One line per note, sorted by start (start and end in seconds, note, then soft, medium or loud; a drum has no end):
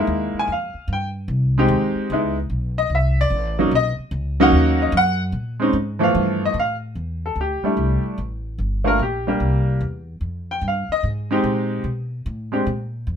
0.00 0.46 G#3 medium
0.00 0.47 A#3 medium
0.00 0.47 D#4 medium
0.00 0.47 E4 medium
0.07 0.32 D#2 medium
0.34 muted upright bass stroke soft
0.39 0.51 G#5 medium
0.47 0.73 F2 medium
0.52 0.88 F5 medium
0.74 muted upright bass stroke soft
0.88 1.27 G2 medium
0.93 1.08 G5 medium
1.28 1.68 C2 medium
1.58 2.09 G#3 medium
1.58 2.09 C4 medium
1.58 2.09 D#4 medium
1.58 2.09 G4 medium
1.68 1.94 D#2 loud
1.95 muted upright bass stroke soft
2.10 2.49 C#2 medium
2.10 2.35 G#3 medium
2.10 2.35 B3 medium
2.10 2.36 D#4 medium
2.10 2.36 E4 medium
2.50 2.89 B1 medium
2.78 2.91 D#5 medium
2.90 3.30 C2 medium
2.95 3.19 E5 medium
3.21 3.70 D5 loud
3.30 3.70 A1 medium
3.59 3.71 F#3 medium
3.59 3.71 A#3 medium
3.59 3.72 C#4 medium
3.59 3.72 D#4 medium
3.71 3.96 B1 medium
3.75 3.90 D#5 loud
3.98 muted upright bass stroke soft
4.11 4.51 C#2 medium
4.40 4.91 F#3 medium
4.40 4.92 A#3 medium
4.40 4.92 C#4 medium
4.40 4.92 D#4 medium
4.40 4.79 F#5 medium
4.52 4.91 D#2 medium
4.82 4.95 D#5 medium
4.92 5.32 F#2 loud
4.97 5.21 F#5 loud
5.32 5.72 A#2 medium
5.60 5.73 G#3 medium
5.60 5.73 C4 medium
5.60 5.74 C#4 medium
5.60 5.74 D#4 medium
5.73 6.13 G#2 medium
5.99 6.53 E3 medium
5.99 6.52 F3 medium
5.99 6.53 A3 medium
5.99 6.53 B3 medium
6.03 6.40 F5 medium
6.15 6.53 G2 medium
6.45 6.57 D#5 medium
6.54 6.94 A2 medium
6.59 6.74 F5 medium
6.95 7.35 E2 medium
7.26 7.38 A4 medium
7.36 7.61 D2 medium
7.41 8.02 G4 medium
7.62 8.16 G3 medium
7.62 8.16 A3 medium
7.62 8.16 D4 medium
7.62 8.17 E4 medium
7.62 muted upright bass stroke soft
7.77 8.02 C2 medium
8.03 muted upright bass stroke soft
8.18 8.58 A1 medium
8.58 8.98 G1 medium
8.84 8.98 A3 medium
8.84 8.98 A#3 medium
8.84 8.98 D4 medium
8.84 8.99 F4 medium
8.84 9.00 A#4 medium
8.99 9.39 A#1 medium
8.99 9.27 G4 medium
9.27 9.79 G3 medium
9.27 9.79 A#3 medium
9.27 9.79 D4 medium
9.27 9.80 G4 medium
9.40 9.80 C2 medium
9.81 10.20 E2 medium
10.21 10.61 F2 medium
10.51 10.64 G5 medium
10.61 10.87 G2 medium
10.68 10.91 F5 medium
10.89 11.05 D#5 medium
10.89 muted upright bass stroke soft
11.03 11.43 G#2 medium
11.31 11.83 G#3 medium
11.31 11.83 C4 medium
11.31 11.83 D#4 medium
11.31 11.83 G4 medium
11.44 11.83 A#2 medium
11.84 12.24 B2 medium
12.26 12.66 A2 medium
12.52 12.65 G#3 medium
12.52 12.65 C4 medium
12.52 12.66 D4 medium
12.52 12.66 G4 medium
12.67 13.06 A#2 medium
13.07 13.16 F2 medium